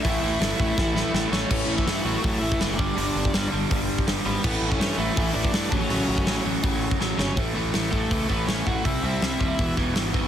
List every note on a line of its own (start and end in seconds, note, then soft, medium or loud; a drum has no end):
0.03 0.17 A1 medium
0.03 0.21 A2 loud
0.03 0.22 E3 loud
0.03 0.22 A3 loud
0.03 1.29 E4 medium
0.03 1.27 E5 medium
0.03 kick loud
0.03 open hi-hat medium
0.23 0.35 A1 loud
0.23 0.39 A2 medium
0.23 0.39 E3 loud
0.23 0.40 A3 loud
0.40 0.53 G1 loud
0.40 0.59 A2 loud
0.40 0.59 E3 loud
0.40 0.59 A3 loud
0.40 snare loud
0.40 open hi-hat medium
0.60 0.71 A1 medium
0.60 0.76 A2 medium
0.60 0.77 E3 medium
0.60 0.78 A3 loud
0.60 kick medium
0.78 1.02 A1 medium
0.78 0.94 A2 medium
0.78 0.94 E3 medium
0.78 0.95 A3 loud
0.78 kick loud
0.78 snare medium
0.96 1.12 A2 loud
0.96 1.13 E3 medium
0.96 1.13 A3 loud
0.96 snare medium
1.14 1.26 A1 medium
1.14 1.31 A2 medium
1.14 1.31 E3 medium
1.14 1.32 A3 medium
1.14 snare loud
1.32 1.44 A1 loud
1.32 1.49 A2 medium
1.32 1.49 E3 loud
1.32 1.50 A3 loud
1.32 1.48 C#4 medium
1.32 1.50 C#5 medium
1.32 snare loud
1.50 1.62 A1 medium
1.50 1.86 A2 medium
1.50 1.86 E3 medium
1.50 1.87 A3 loud
1.50 1.75 C#4 medium
1.50 1.76 C#5 medium
1.50 kick loud
1.50 crash loud
1.68 1.79 A1 medium
1.76 2.03 E3 medium
1.76 2.01 E4 loud
1.76 kick medium
1.87 1.98 G2 medium
1.87 2.04 A2 medium
1.87 2.05 E3 medium
1.87 2.05 A3 loud
1.87 snare loud
1.87 open hi-hat medium
2.02 2.16 A1 medium
2.02 2.22 A2 medium
2.02 2.39 F#3 medium
2.02 2.38 F#4 loud
2.06 2.22 E3 medium
2.06 2.23 A3 loud
2.23 2.36 A1 loud
2.23 2.60 A2 medium
2.23 2.60 E3 medium
2.23 2.60 A3 medium
2.23 kick loud
2.23 open hi-hat medium
2.39 2.54 A1 medium
2.39 2.76 E3 medium
2.39 2.75 E4 loud
2.52 kick loud
2.61 2.79 F#1 loud
2.61 2.78 A2 medium
2.61 2.78 E3 medium
2.61 2.78 A3 medium
2.61 snare loud
2.61 open hi-hat medium
2.75 2.95 G2 loud
2.75 3.46 D4 medium
2.75 3.48 D5 medium
2.79 2.90 G1 loud
2.79 2.96 D3 loud
2.79 2.97 G3 loud
2.79 kick loud
2.96 3.08 G1 loud
2.96 3.33 G2 loud
2.96 3.33 D3 loud
2.96 3.33 G3 loud
2.96 open hi-hat medium
3.16 3.27 G1 loud
3.25 kick medium
3.34 3.45 G1 medium
3.34 3.50 G2 medium
3.34 3.51 D3 medium
3.34 3.51 G3 loud
3.34 snare loud
3.34 open hi-hat medium
3.51 3.64 G1 loud
3.51 3.69 G2 medium
3.51 3.69 D3 medium
3.51 3.70 G3 medium
3.70 3.94 G1 loud
3.70 4.05 G2 loud
3.70 4.06 D3 medium
3.70 4.07 G3 loud
3.70 kick loud
3.70 open hi-hat medium
3.99 kick loud
4.07 4.19 G1 loud
4.07 4.24 G2 medium
4.07 4.24 D3 medium
4.07 4.25 G3 loud
4.07 snare loud
4.07 open hi-hat medium
4.25 4.37 G#1 medium
4.25 4.42 G2 medium
4.25 4.43 D3 loud
4.25 4.43 G3 loud
4.25 4.42 B3 medium
4.25 4.43 B4 medium
4.43 4.55 A1 medium
4.43 4.80 A2 medium
4.43 4.79 E3 loud
4.43 4.81 A3 medium
4.43 4.71 B3 medium
4.43 4.69 B4 medium
4.43 kick loud
4.43 crash loud
4.62 4.73 A1 medium
4.70 4.99 C#4 loud
4.70 4.97 C#5 medium
4.70 kick medium
4.80 4.91 G2 loud
4.80 4.98 A2 medium
4.80 4.98 E3 loud
4.80 4.99 A3 loud
4.80 snare loud
4.80 open hi-hat medium
4.97 5.09 A1 medium
4.97 5.16 A2 medium
4.97 5.16 E3 medium
4.97 5.33 E3 medium
4.97 5.17 A3 loud
4.97 5.33 E4 loud
5.17 5.28 A1 loud
5.17 5.53 A2 medium
5.17 5.52 E3 loud
5.17 5.54 A3 loud
5.17 kick loud
5.17 open hi-hat medium
5.33 5.46 A1 medium
5.33 5.72 D4 loud
5.33 5.69 D5 medium
5.44 kick loud
5.53 5.65 G2 loud
5.53 5.71 A2 medium
5.53 5.71 E3 loud
5.53 7.38 A3 medium
5.53 snare loud
5.53 open hi-hat medium
5.70 5.83 A1 loud
5.70 5.88 F#2 loud
5.70 5.89 C#3 loud
5.70 5.89 F#3 loud
5.70 6.40 C#4 loud
5.70 6.41 C#5 medium
5.70 kick loud
5.89 6.01 A1 medium
5.89 6.26 F#2 medium
5.89 6.26 C#3 medium
5.89 6.27 F#3 loud
5.89 open hi-hat medium
6.08 6.20 A1 medium
6.18 kick medium
6.27 6.38 A1 medium
6.27 6.44 F#2 medium
6.27 6.44 C#3 medium
6.27 6.45 F#3 medium
6.27 snare loud
6.27 open hi-hat medium
6.45 6.57 A1 medium
6.45 6.62 F#2 medium
6.45 6.62 C#3 medium
6.45 6.63 F#3 loud
6.63 6.87 A1 medium
6.63 6.98 F#2 medium
6.63 6.99 C#3 loud
6.63 7.00 F#3 loud
6.63 kick loud
6.63 open hi-hat medium
6.91 kick loud
6.99 7.12 A1 medium
6.99 7.16 F#2 medium
6.99 7.17 C#3 medium
6.99 7.18 F#3 loud
6.99 snare medium
7.18 7.37 G1 loud
7.18 7.36 F#2 medium
7.18 7.36 C#3 medium
7.18 7.36 F#3 loud
7.18 7.36 C#4 medium
7.18 7.36 C#5 medium
7.18 snare loud
7.37 7.51 A1 medium
7.37 7.53 A2 medium
7.37 7.55 E3 loud
7.37 7.55 A3 medium
7.37 kick loud
7.37 open hi-hat medium
7.54 7.70 A1 medium
7.54 7.72 A2 medium
7.54 7.73 E3 medium
7.54 7.73 A3 loud
7.73 7.88 A1 medium
7.73 7.90 A2 loud
7.73 7.92 E3 medium
7.73 7.92 A3 loud
7.73 snare medium
7.73 open hi-hat medium
7.91 8.07 A1 medium
7.91 8.10 A2 medium
7.91 8.11 E3 medium
7.91 8.26 A3 medium
7.91 8.11 A3 medium
7.91 8.30 A4 medium
7.91 kick medium
8.11 8.25 C#2 medium
8.11 8.28 A2 medium
8.11 8.29 E3 medium
8.11 8.29 A3 loud
8.11 kick loud
8.11 open hi-hat medium
8.29 8.43 A1 medium
8.29 8.47 A2 medium
8.29 8.48 E3 medium
8.29 8.48 A3 medium
8.29 8.47 B3 medium
8.29 8.47 B4 medium
8.29 kick medium
8.47 8.62 A1 medium
8.47 8.66 A2 medium
8.47 8.67 E3 loud
8.47 8.67 A3 medium
8.47 8.65 C#4 medium
8.47 8.67 C#5 medium
8.47 snare loud
8.47 open hi-hat medium
8.67 8.80 A1 medium
8.67 8.84 A2 medium
8.67 8.85 E3 medium
8.67 8.84 A3 medium
8.67 8.84 F#4 medium
8.67 8.85 F#5 medium
8.67 kick medium
8.85 8.99 C2 medium
8.85 9.02 C3 medium
8.85 9.03 G3 loud
8.85 9.03 C4 medium
8.85 9.02 E4 medium
8.85 9.02 E5 loud
8.85 kick loud
8.85 open hi-hat medium
9.03 9.17 C2 medium
9.03 9.21 C3 medium
9.03 9.21 G3 medium
9.03 9.22 C4 medium
9.03 9.73 E4 medium
9.03 9.73 E5 medium
9.22 9.35 C2 medium
9.22 9.38 C3 loud
9.22 9.39 G3 medium
9.22 9.39 C4 loud
9.22 snare loud
9.22 open hi-hat soft
9.39 9.54 D#2 medium
9.39 9.57 C3 medium
9.39 9.57 G3 medium
9.39 9.58 C4 medium
9.39 kick medium
9.58 9.73 E1 medium
9.58 9.76 E2 medium
9.58 9.76 B2 medium
9.58 9.77 E3 loud
9.58 kick loud
9.58 open hi-hat medium
9.77 9.91 E1 medium
9.77 9.94 E2 medium
9.77 9.94 B2 medium
9.77 9.95 E3 loud
9.77 kick medium
9.95 10.23 G#1 medium
9.95 10.12 E2 medium
9.95 10.13 B2 medium
9.95 10.14 E3 loud
9.95 snare loud
9.95 open hi-hat medium
10.13 10.28 E2 medium
10.13 10.28 B2 medium
10.13 10.28 E3 loud
10.13 kick medium